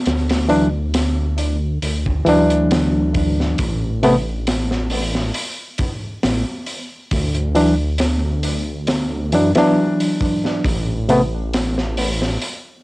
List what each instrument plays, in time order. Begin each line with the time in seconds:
0.06 detuned saw bass D2, snare, open hi-hat
0.29 snare, open hi-hat
0.48 reed electric piano E3 F#3 D4, open hi-hat
0.94 snare, open hi-hat
1.38 open hi-hat
1.82 detuned saw bass D2, open hi-hat
2.06 kick
2.25 detuned saw bass D2, reed electric piano E3 F#3 D4, open hi-hat
2.50 closed hi-hat
2.71 snare, open hi-hat
3.14 kick, open hi-hat
3.40 snare
3.58 detuned saw bass A1, kick, open hi-hat
4.03 reed electric piano C3 A3 B3, open hi-hat
4.47 snare, open hi-hat
4.71 snare
4.90 open hi-hat
5.15 snare
5.34 open hi-hat
5.78 kick, open hi-hat
6.23 detuned saw bass A1, snare, open hi-hat
6.66 open hi-hat
7.11 detuned saw bass D2, kick, open hi-hat
7.34 closed hi-hat
7.55 reed electric piano E3 F#3 D4, open hi-hat
7.98 snare, open hi-hat
8.43 open hi-hat
8.87 snare, open hi-hat
9.32 detuned saw bass F#2, reed electric piano E3 F#3 D4, open hi-hat
9.55 reed electric piano E3 F#3 D4, snare, open hi-hat
10.00 open hi-hat
10.21 kick, open hi-hat
10.45 snare
10.64 detuned saw bass A1, kick, open hi-hat
11.09 reed electric piano C3 A3 B3, open hi-hat
11.53 snare, open hi-hat
11.78 snare
11.97 open hi-hat
12.22 snare
12.42 open hi-hat